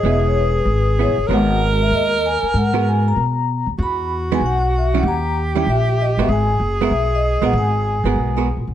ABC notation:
X:1
M:4/4
L:1/8
Q:"Swing" 1/4=192
K:G#m
V:1 name="Vibraphone"
e c B4 c2 | f2 z e d2 g2 | f2 g a4 z | b2 z g f2 e f |
a2 z =g e2 d e | g2 z e2 d2 f | g6 z2 |]
V:2 name="Tenor saxophone"
G8 | A8- | A4- A z3 | F8 |
=G8 | G8- | G6- G z |]
V:3 name="Hollow-body jazz guitar"
[B,EG]3 z3 [B,EG] z | [G,B,FA]4- [G,B,FA] z3 | z [G,B,FA]3 z4 | z3 [E,G,B,D] z3 [D,=G,CE] |
z3 [D,=G,CE] z3 [^G,B,FA] | z3 [G,B,FA] z3 [G,B,FA] | z3 [G,B,FA]2 [G,B,FA] z2 |]
V:4 name="Upright bass" clef=bass
E,,,4 G,,,2- (3G,,, B,,, =G,,, | G,,,4 D,,3 z | G,,4 B,,3 D,, | E,,4 B,,,4 |
D,,4 A,,,3 =G,,, | G,,,2 F,,,2 B,,,3 A,,, | G,,,3 =G,,, B,,,2- (3B,,, A,,, =A,,, |]